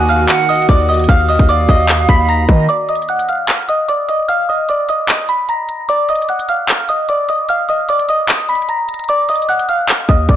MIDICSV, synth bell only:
0, 0, Header, 1, 2, 480
1, 0, Start_track
1, 0, Key_signature, -6, "minor"
1, 0, Tempo, 400000
1, 1306, Time_signature, 4, 2, 24, 8
1, 12437, End_track
2, 0, Start_track
2, 0, Title_t, "Synth bell"
2, 0, Program_c, 0, 98
2, 110, Note_on_c, 0, 89, 85
2, 118, Note_on_c, 0, 77, 68
2, 559, Note_off_c, 0, 89, 0
2, 563, Note_off_c, 0, 77, 0
2, 588, Note_on_c, 0, 87, 88
2, 598, Note_on_c, 0, 75, 69
2, 805, Note_off_c, 0, 87, 0
2, 811, Note_off_c, 0, 75, 0
2, 825, Note_on_c, 0, 86, 84
2, 836, Note_on_c, 0, 74, 63
2, 1044, Note_off_c, 0, 86, 0
2, 1050, Note_off_c, 0, 74, 0
2, 1066, Note_on_c, 0, 87, 82
2, 1075, Note_on_c, 0, 75, 58
2, 1285, Note_off_c, 0, 87, 0
2, 1290, Note_off_c, 0, 75, 0
2, 1305, Note_on_c, 0, 89, 102
2, 1315, Note_on_c, 0, 77, 78
2, 1524, Note_off_c, 0, 89, 0
2, 1530, Note_off_c, 0, 77, 0
2, 1545, Note_on_c, 0, 87, 83
2, 1554, Note_on_c, 0, 75, 67
2, 1764, Note_off_c, 0, 87, 0
2, 1769, Note_off_c, 0, 75, 0
2, 1788, Note_on_c, 0, 86, 94
2, 1798, Note_on_c, 0, 74, 65
2, 2006, Note_off_c, 0, 86, 0
2, 2011, Note_off_c, 0, 74, 0
2, 2027, Note_on_c, 0, 87, 93
2, 2037, Note_on_c, 0, 75, 69
2, 2477, Note_off_c, 0, 87, 0
2, 2483, Note_off_c, 0, 75, 0
2, 2505, Note_on_c, 0, 83, 87
2, 2514, Note_on_c, 0, 95, 67
2, 2724, Note_off_c, 0, 83, 0
2, 2729, Note_off_c, 0, 95, 0
2, 2745, Note_on_c, 0, 82, 71
2, 2754, Note_on_c, 0, 94, 55
2, 3196, Note_off_c, 0, 82, 0
2, 3201, Note_off_c, 0, 94, 0
2, 3224, Note_on_c, 0, 86, 104
2, 3234, Note_on_c, 0, 74, 74
2, 3444, Note_off_c, 0, 86, 0
2, 3449, Note_off_c, 0, 74, 0
2, 3464, Note_on_c, 0, 87, 84
2, 3473, Note_on_c, 0, 75, 67
2, 3684, Note_off_c, 0, 87, 0
2, 3688, Note_off_c, 0, 75, 0
2, 3704, Note_on_c, 0, 90, 90
2, 3715, Note_on_c, 0, 78, 68
2, 3924, Note_off_c, 0, 90, 0
2, 3929, Note_off_c, 0, 78, 0
2, 3944, Note_on_c, 0, 89, 76
2, 3954, Note_on_c, 0, 77, 61
2, 4396, Note_off_c, 0, 89, 0
2, 4401, Note_off_c, 0, 77, 0
2, 4423, Note_on_c, 0, 87, 83
2, 4432, Note_on_c, 0, 75, 64
2, 4643, Note_off_c, 0, 87, 0
2, 4648, Note_off_c, 0, 75, 0
2, 4661, Note_on_c, 0, 86, 79
2, 4671, Note_on_c, 0, 74, 61
2, 4882, Note_off_c, 0, 86, 0
2, 4887, Note_off_c, 0, 74, 0
2, 4902, Note_on_c, 0, 87, 71
2, 4911, Note_on_c, 0, 75, 57
2, 5122, Note_off_c, 0, 87, 0
2, 5127, Note_off_c, 0, 75, 0
2, 5141, Note_on_c, 0, 89, 108
2, 5151, Note_on_c, 0, 77, 82
2, 5362, Note_off_c, 0, 89, 0
2, 5367, Note_off_c, 0, 77, 0
2, 5385, Note_on_c, 0, 87, 82
2, 5395, Note_on_c, 0, 75, 67
2, 5604, Note_off_c, 0, 87, 0
2, 5609, Note_off_c, 0, 75, 0
2, 5627, Note_on_c, 0, 86, 81
2, 5635, Note_on_c, 0, 74, 65
2, 5845, Note_off_c, 0, 86, 0
2, 5850, Note_off_c, 0, 74, 0
2, 5868, Note_on_c, 0, 87, 81
2, 5877, Note_on_c, 0, 75, 66
2, 6318, Note_off_c, 0, 87, 0
2, 6323, Note_off_c, 0, 75, 0
2, 6346, Note_on_c, 0, 83, 90
2, 6355, Note_on_c, 0, 95, 63
2, 6565, Note_off_c, 0, 83, 0
2, 6570, Note_off_c, 0, 95, 0
2, 6586, Note_on_c, 0, 82, 77
2, 6596, Note_on_c, 0, 94, 65
2, 7037, Note_off_c, 0, 82, 0
2, 7042, Note_off_c, 0, 94, 0
2, 7064, Note_on_c, 0, 86, 106
2, 7074, Note_on_c, 0, 74, 82
2, 7284, Note_off_c, 0, 86, 0
2, 7289, Note_off_c, 0, 74, 0
2, 7307, Note_on_c, 0, 87, 84
2, 7316, Note_on_c, 0, 75, 64
2, 7525, Note_off_c, 0, 87, 0
2, 7530, Note_off_c, 0, 75, 0
2, 7545, Note_on_c, 0, 90, 69
2, 7554, Note_on_c, 0, 78, 57
2, 7764, Note_off_c, 0, 90, 0
2, 7769, Note_off_c, 0, 78, 0
2, 7785, Note_on_c, 0, 89, 81
2, 7795, Note_on_c, 0, 77, 66
2, 8237, Note_off_c, 0, 89, 0
2, 8242, Note_off_c, 0, 77, 0
2, 8266, Note_on_c, 0, 87, 84
2, 8277, Note_on_c, 0, 75, 64
2, 8485, Note_off_c, 0, 87, 0
2, 8491, Note_off_c, 0, 75, 0
2, 8504, Note_on_c, 0, 86, 80
2, 8514, Note_on_c, 0, 74, 64
2, 8724, Note_off_c, 0, 86, 0
2, 8729, Note_off_c, 0, 74, 0
2, 8746, Note_on_c, 0, 87, 79
2, 8756, Note_on_c, 0, 75, 55
2, 8965, Note_off_c, 0, 87, 0
2, 8970, Note_off_c, 0, 75, 0
2, 8989, Note_on_c, 0, 89, 96
2, 8998, Note_on_c, 0, 77, 77
2, 9206, Note_off_c, 0, 89, 0
2, 9211, Note_off_c, 0, 77, 0
2, 9224, Note_on_c, 0, 87, 83
2, 9235, Note_on_c, 0, 75, 63
2, 9444, Note_off_c, 0, 87, 0
2, 9449, Note_off_c, 0, 75, 0
2, 9466, Note_on_c, 0, 86, 90
2, 9476, Note_on_c, 0, 74, 64
2, 9685, Note_off_c, 0, 86, 0
2, 9690, Note_off_c, 0, 74, 0
2, 9706, Note_on_c, 0, 87, 93
2, 9716, Note_on_c, 0, 75, 65
2, 10157, Note_off_c, 0, 87, 0
2, 10162, Note_off_c, 0, 75, 0
2, 10186, Note_on_c, 0, 83, 82
2, 10194, Note_on_c, 0, 95, 64
2, 10404, Note_off_c, 0, 83, 0
2, 10409, Note_off_c, 0, 95, 0
2, 10426, Note_on_c, 0, 82, 73
2, 10435, Note_on_c, 0, 94, 53
2, 10877, Note_off_c, 0, 82, 0
2, 10882, Note_off_c, 0, 94, 0
2, 10905, Note_on_c, 0, 86, 104
2, 10914, Note_on_c, 0, 74, 73
2, 11124, Note_off_c, 0, 86, 0
2, 11129, Note_off_c, 0, 74, 0
2, 11145, Note_on_c, 0, 87, 84
2, 11154, Note_on_c, 0, 75, 65
2, 11364, Note_off_c, 0, 87, 0
2, 11369, Note_off_c, 0, 75, 0
2, 11384, Note_on_c, 0, 90, 93
2, 11393, Note_on_c, 0, 78, 67
2, 11604, Note_off_c, 0, 90, 0
2, 11609, Note_off_c, 0, 78, 0
2, 11624, Note_on_c, 0, 89, 76
2, 11634, Note_on_c, 0, 77, 64
2, 12076, Note_off_c, 0, 89, 0
2, 12081, Note_off_c, 0, 77, 0
2, 12104, Note_on_c, 0, 87, 85
2, 12114, Note_on_c, 0, 75, 65
2, 12323, Note_off_c, 0, 87, 0
2, 12329, Note_off_c, 0, 75, 0
2, 12346, Note_on_c, 0, 86, 83
2, 12357, Note_on_c, 0, 74, 60
2, 12437, Note_off_c, 0, 74, 0
2, 12437, Note_off_c, 0, 86, 0
2, 12437, End_track
0, 0, End_of_file